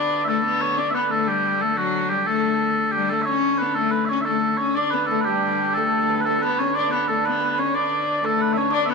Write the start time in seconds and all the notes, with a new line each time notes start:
Already playing: D3 D4 G4 A4 B4 D5
0.25 A3 A4 E5
0.45 B3
0.61 C#5
0.78 D3 D4 D5
0.91 B3 B4 E5
1.10 A3 A4
1.27 G3 G4
1.61 A3 A4
1.77 F#3 F#4
2.09 G3 G4
2.26 A3 A4
2.91 G3 G4
3.09 A3 A4
3.22 C#5 E5
3.29 C#4
3.58 B3 B4
3.75 A3 A4
3.91 B4
4.05 C#5 E5
4.11 C#4
4.21 E5
4.25 A3 A4
4.57 C#4 C#5
4.75 D3 D4 D5
4.90 B3 B4
5.07 A4
5.11 A3 A4
5.21 G4 B4
5.27 G3 G4
5.74 A3 A4
6.10 B4
6.21 B4
6.25 A3 A4
6.42 B3 B4
6.59 C#4 C#5
6.74 D4 D5
6.91 B3 B4
7.08 A3 A4
7.25 B3 B4
7.40 B4
7.58 C#4 C#5
7.74 D4 D5
8.24 A3 A4
8.39 B4
8.53 C#4 C#5 E5
8.57 C#5
8.70 D4 D5
8.74 D3
8.86 B3 E5
8.90 B4